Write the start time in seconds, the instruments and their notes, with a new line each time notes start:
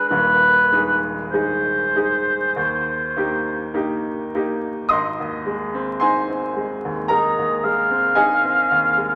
Already playing: grand piano G#3 D4 G#4
0.08 grand piano D#1 D#2, oboe B4
0.72 grand piano G#3 D#4 G#4
1.31 grand piano G#3 D#4 G#4, oboe C5
1.96 grand piano G#3 D#4 G#4
2.56 grand piano D#2
3.16 grand piano A#3 D#4 G4
3.74 grand piano A#3 D#4 G4
4.35 grand piano A#3 D#4 G4
4.89 grand piano G#1 D#5 C6 D#6
5.20 grand piano D#2
5.46 grand piano G#3
5.74 grand piano C4
6.00 grand piano D#4 C5 G#5 C6
6.29 grand piano C4
6.56 grand piano G#3
6.85 grand piano D#2
7.08 grand piano G#3 A#4 A#5, oboe D#5
7.39 grand piano D#2
7.64 grand piano G#3, oboe F5
7.91 grand piano C4
8.15 grand piano D#4 G#4 D#5 G#5
8.44 grand piano C4
8.71 grand piano D#2
8.98 grand piano G#3